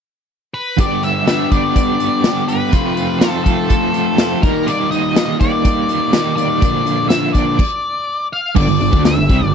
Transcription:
0.54 B4
0.77 G2 D3 G3 B3 D4 G4 D5, kick, closed hi-hat
1.02 G3 B3 D4 G4 E5, closed hi-hat
1.26 G2 D3 G3 B3 D4 G4, snare, closed hi-hat
1.51 G3 B3 D4 G4 D5, kick, closed hi-hat
1.76 kick, closed hi-hat
1.98 G3 B3 D4 G4, closed hi-hat
2.23 G2 D3 G3 B3 D4 G4, snare, closed hi-hat
2.48 G3 B3 D4 G4 B4, closed hi-hat
2.71 F2 C3 F3 A3 C4 F4, kick, closed hi-hat
2.95 F3 A3 C4 F4, closed hi-hat
3.20 F2 C3 F3 A3 C4 F4 A4, snare, closed hi-hat
3.44 F3 A3 C4 F4 A4, kick, closed hi-hat
3.70 kick, closed hi-hat
3.93 F3 A3 C4 F4, closed hi-hat
4.17 F2 C3 F3 A3 C4 F4, snare, closed hi-hat
4.42 D#3 G3 A#3 D#4 A#4, kick, closed hi-hat
4.67 D#3 G3 A#3 D#4 D5, closed hi-hat
4.91 G3 A#3 D#4 D#5, closed hi-hat
5.16 D#3 G3 A#3 D#4, snare, closed hi-hat
5.41 G3 A#3 D#4 D5, kick, closed hi-hat
5.65 kick, closed hi-hat
5.89 G3 A#3 D#4, closed hi-hat
6.13 D#3 G3 A#3 D#4, snare, closed hi-hat
6.36 G3 A#3 D#4 D5, closed hi-hat
6.61 A#2 D3 F3 A#3 D4, kick, closed hi-hat
6.86 F3 A#3 D4, closed hi-hat
7.09 A#2 D3 F3 A#3 D4 E5, snare, closed hi-hat
7.33 F3 A#3 D4 D5, kick, closed hi-hat
7.59 kick, crash
8.33 F5
8.55 G1 G2 D3 D5, kick, crash
8.68 G1 G2 D3
8.80 G1 G2 D3, open hi-hat
8.91 D2 D3 A3 D4, kick
9.05 E5, snare, open hi-hat
9.16 G1 G2 D3
9.29 C2 C3 G3, kick, open hi-hat
9.42 G1 G2 D3

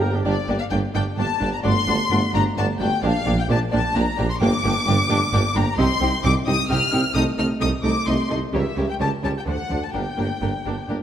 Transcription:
Already playing: G1 G2
0.00 A#3 G4 A#4 A#5
0.12 D4 G4 G5
0.23 G1 G2 A#3 D4 G4 D5
0.48 G1 G2 A#3 D4 G4 D5
0.59 F5
0.71 G1 G2 A#3 D4 G4 D5 G5
0.94 G1 G2 A#3 D4 G4 D5 G5
1.17 G1 G2 A#3 D4 G4 D5 A5
1.40 G1 G2 A#3 D4 G4 D5
1.53 A#5
1.63 G1 G2 A3 D4 F#4 D5 C6
1.87 G1 G2 A3 D4 F#4 D5
2.10 G1 G2 A3 D4 F#4 D5
2.33 G1 G2 A3 D4 F#4 D5 A#5
2.56 G1 G2 A3 D4 F#4 D5 A5
2.80 G1 G2 A3 D4 F#4 D5 G5
3.02 A#1 A#2 A#3 D4 G4 D5 F5
3.26 A#1 A#2 A#3 D4 G4 D5
3.40 G5
3.48 A#1 A#2 A#3 D4 G4 D5 A5
3.72 A#1 A#2 A#3 D4 G4 D5 A5
3.95 A#1 A#2 A#3 D4 G4 D5 A#5
4.17 A#1 A#2 A#3 D4 G4 D5
4.31 C6
4.40 G1 G2 A#3 D4 G4 G5 D6
4.64 G1 G2 A#3 D4 G4 G5
4.87 G1 G2 A#3 D4 G4 G5
5.09 G1 G2 A#3 D4 G4 G5
5.33 G1 G2 A#3 D4 G4 G5
5.55 G1 G2 A#3 D4 G4 G5 A#5
5.78 C2 C3 C4 D#4 G4 G5 C6
6.01 C2 C3 C4 D#4 G4 G5
6.24 C2 C3 C4 D#4 G4 G5 D6
6.47 C2 C3 C4 D#4 G4 G5 D#6
6.70 C2 C3 C4 D#4 G4 G5 F6
6.92 C2 C3 C4 D#4 G4 G5
7.15 C2 C3 A3 D#4 A4 D#5 D#6
7.38 C2 C3 A3 D#4 A4 D#5 F6
7.60 C2 C3 A3 D#4 A4 D#5 D#6
7.83 C2 C3 A3 D#4 A4 D#5 D6
8.06 C2 C3 A3 D#4 A4 D#5 C6
8.30 C2 C3 A3 D#4 A4 D#5
8.53 C#2 C#3 G3 G4 A#4 C#5 E5
8.77 C#2 C#3 G3 G4 A#4 C#5
8.89 G5
8.99 C#2 C#3 G3 G4 A#4 C#5 A5
9.23 C#2 C#3 G3 G4 A#4 C#5 A5
9.38 G5
9.46 D2 D3 A3 D4 A4 C5 F#5
9.70 D2 D3 A3 D4 A4 C5
9.84 A5
9.94 G1 G2 A#3 D4 G4 A#4 G5
10.17 G1 G2 A#3 D4 G4 A#4
10.41 G1 G2 A#3 D4 G4 A#4
10.65 G1 G2 A#3 D4 G4 A#4
10.89 G1 G2 A#3 D4 G4 A#4

